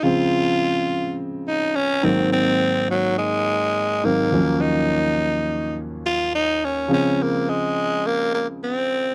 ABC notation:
X:1
M:4/4
L:1/8
Q:1/4=105
K:Ebdor
V:1 name="Tenor saxophone"
F4 z E D C | C2 G, A,3 B,2 | E4 z F E D | D B, A,2 B, B, C2 |]
V:2 name="Grand piano" clef=bass
[D,F,A,C]6- [D,F,A,C] [A,,E,G,B,C]- | [A,,E,G,B,C]6 [A,,E,G,B,C] [E,,F,G,B,D]- | [E,,F,G,B,D]6- [E,,F,G,B,D] z | [D,F,A,C]8 |]